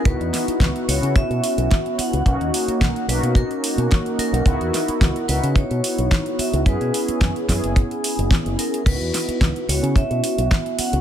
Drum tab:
CC |----------------|----------------|----------------|----------------|
HH |xxoxxxoxxxoxxxox|xxoxxxoxxxoxxxox|xxoxxxoxxxoxxxox|xxoxxxoxxxoxxxox|
SD |--o-o-------o---|----o-------o---|--o-o-------o---|----o-o-----o---|
BD |o---o---o---o---|o---o---o---o---|o---o---o---o---|o---o-o-o---o---|

CC |x---------------|
HH |xxoxxxoxxxoxxxox|
SD |--o-o-------o---|
BD |o---o---o---o---|